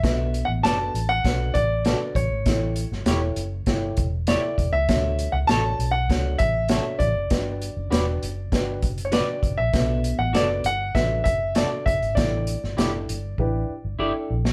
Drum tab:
HH |x-x-x-x-x-x-x-x-|x-x-x-x-x-x-x-x-|x-x-x-x-x-x-x-x-|x-x-x-x-x-xxx-x-|
SD |o---o---o---o---|o--oo---o---o---|o---o---o---o---|o---o---o---o---|
BD |o-------o-o---o-|o-------o-o---o-|o-------o-o---o-|o-------o-o---o-|

HH |x-x-x-x-x-x-x-xx|x-x-x-x---------|
SD |o---o---o---o---|o--oo----------o|
BD |o-------o-o---o-|o-------o-------|